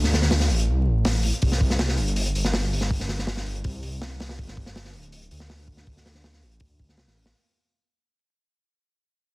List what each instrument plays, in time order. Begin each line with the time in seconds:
Already playing: detuned saw bass D2
0.04 snare
0.13 snare, open hi-hat
0.22 snare
0.31 snare, open hi-hat
0.40 snare
0.49 detuned saw bass A1, open hi-hat
0.59 closed hi-hat
0.68 detuned saw bass C2
0.87 detuned saw bass A1
1.05 snare, open hi-hat
1.23 open hi-hat
1.33 closed hi-hat
1.42 detuned saw bass C2, kick, open hi-hat
1.52 snare
1.61 kick, open hi-hat
1.70 snare
1.79 snare, open hi-hat
1.89 snare
1.97 detuned saw bass G1, open hi-hat
2.07 closed hi-hat
2.16 open hi-hat
2.26 closed hi-hat
2.35 detuned saw bass G1, open hi-hat
2.45 snare
2.54 snare, open hi-hat
2.73 open hi-hat
2.81 snare
2.91 kick, open hi-hat
3.00 snare
3.09 snare, open hi-hat
3.19 snare
3.27 snare, open hi-hat
3.37 snare
3.46 detuned saw bass G1, open hi-hat
3.55 closed hi-hat
3.64 detuned saw bass C2, kick, open hi-hat
3.83 open hi-hat
4.02 snare, open hi-hat
4.20 snare, open hi-hat
4.29 snare, open hi-hat
4.39 detuned saw bass G1, kick, open hi-hat
4.48 snare
4.57 kick, open hi-hat
4.66 snare
4.75 snare, open hi-hat
4.85 snare
4.93 detuned saw bass D1, open hi-hat
5.03 closed hi-hat
5.12 open hi-hat
5.22 closed hi-hat
5.31 detuned saw bass D2, open hi-hat
5.40 snare
5.50 snare, open hi-hat
5.68 kick, open hi-hat
5.77 snare
5.87 detuned saw bass D2, kick, open hi-hat
5.97 snare
6.05 snare, open hi-hat
6.15 snare
6.24 snare, open hi-hat
6.33 snare
6.42 detuned saw bass A1, open hi-hat
6.51 closed hi-hat
6.60 detuned saw bass D2, kick, open hi-hat
6.80 kick, open hi-hat
6.89 snare
6.97 detuned saw bass C2, snare, open hi-hat
7.07 detuned saw bass A1, snare
7.17 open hi-hat
7.26 snare, open hi-hat